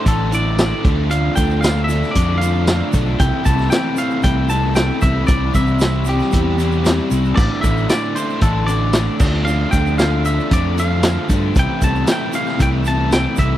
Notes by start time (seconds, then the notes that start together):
0.05 A1 A2 D3 E3 A3 D4 E4 A4, kick, closed hi-hat, shaker
0.31 A2 D3 E3 A3 D4 E4 D5, closed hi-hat, shaker
0.57 A2 D3 E3 A3 D4 E4, snare, closed hi-hat, tambourine, shaker
0.83 D2 D3 F3 A3 D4 F4, kick, closed hi-hat
1.10 D3 F3 A3 D4 F4 F5, closed hi-hat, shaker
1.36 D2 D3 F3 A3 D4 F4 G5, kick, closed hi-hat, shaker
1.50 shaker
1.61 D3 F3 A3 D4 F4 F5, snare, closed hi-hat, tambourine, shaker
1.84 D3 E5
1.89 F3 A3 D4 F4, closed hi-hat, shaker
2.03 snare, shaker
2.11 D3 A3 D5, closed hi-hat
2.16 F2 F3 D4 F4, kick, shaker
2.38 D3 A3 D4 F5, closed hi-hat
2.42 F3 F4, shaker
2.67 D3 F3 A3 D4 F4, snare, closed hi-hat, tambourine, shaker
2.93 B1 D3 F3 A3 D4 F4, kick, closed hi-hat, shaker
3.18 C2 C3 E3 A3 C4 E4 G5, kick, closed hi-hat, shaker
3.45 C2 C3 E3 A3 C4 E4 A5, kick, closed hi-hat, shaker
3.58 snare, shaker
3.70 C3 E3 A3 C4 E4 G5, snare, closed hi-hat, tambourine, shaker
3.97 C3 E3 A3 C4 E4 F5, closed hi-hat, shaker
4.10 shaker
4.23 C2 C3 E3 A3 C4 E4 G5, kick, closed hi-hat, shaker
4.49 C3 E3 A3 C4 E4 A5, closed hi-hat, shaker
4.75 C3 E3 A3 C4 E4 G5, snare, closed hi-hat, tambourine, shaker
5.01 C2 C3 E3 A3 C4 E4 E5, kick, closed hi-hat, shaker
5.27 C2 C3 E3 G3 C4 E4 D5, kick, closed hi-hat, shaker
5.53 C2 C3 E3 G3 C4 E4 E5, kick, closed hi-hat, shaker
5.67 shaker
5.79 C3 E3 G3 C4 E4, snare, closed hi-hat, tambourine, shaker
6.05 C3 E3 G3 C4 E4, closed hi-hat, shaker
6.09 G4
6.19 snare, shaker
6.31 E2 C3 E3 G3 C4 E4, kick, closed hi-hat, shaker
6.57 C3 E3 G3 C4 E4, closed hi-hat, shaker
6.72 shaker
6.84 C3 E3 G3 C4 E4, snare, closed hi-hat, tambourine, shaker
7.10 C2 C3 E3 G3 C4 E4, closed hi-hat, shaker
7.25 shaker
7.36 A1 A2 D3 E3 A3 D4 E4 D5, kick, crash, shaker
7.61 A1 A2 D3 E3 A3 D4 E4 E5, kick, closed hi-hat, shaker
7.77 shaker
7.89 A2 D3 E3 A3 D4 E4 D5, snare, closed hi-hat, tambourine, shaker
8.15 A2 D3 E3 A3 D4 E4 C5, closed hi-hat, shaker
8.30 shaker
8.41 A1 A2 D3 E3 A3 D4 E4 A4, kick, closed hi-hat, shaker
8.67 A2 D3 E3 A3 D4 E4 D5, closed hi-hat, shaker
8.93 A2 D3 E3 A3 D4 E4, snare, closed hi-hat, tambourine, shaker
9.20 D2 D3 F3 A3 D4 F4, kick, crash, shaker
9.45 D3 F3 A3 D4 F4 F5, shaker
9.71 D2 D3 F3 A3 D4 F4 G5, kick, closed hi-hat, shaker
9.86 shaker
9.98 D3 F3 A3 D4 F4 F5, snare, closed hi-hat, tambourine, shaker
10.24 D3 F3 A3 D4 F4 E5, closed hi-hat, shaker
10.39 shaker
10.51 F2 D3 F3 A3 D4 F4 D5, kick, closed hi-hat, shaker
10.77 D3 F3 A3 D4 F4 F5, closed hi-hat, shaker
11.03 D3 F3 A3 D4 F4, snare, closed hi-hat, tambourine, shaker
11.29 G2 D3 F3 A3 D4 F4, kick, closed hi-hat, shaker
11.55 C2 C3 E3 A3 C4 E4 G5, kick, closed hi-hat, shaker
11.81 C2 C3 E3 A3 C4 E4 A5, kick, closed hi-hat, shaker
11.95 shaker
12.07 C3 E3 A3 C4 E4, snare, closed hi-hat, tambourine, shaker
12.12 G5
12.33 C3 E3 A3 C4 E4 F5, closed hi-hat, shaker
12.46 snare, shaker
12.58 C2 C3 E3 A3 C4 E4, kick, closed hi-hat, shaker
12.62 G5
12.84 C3 E3 A3 C4 E4 A5, closed hi-hat, shaker
13.11 C3 E3 A3 C4 E4 G5, snare, closed hi-hat, tambourine, shaker
13.36 C2 C3 E3 A3 C4 E4 E5, kick, closed hi-hat, shaker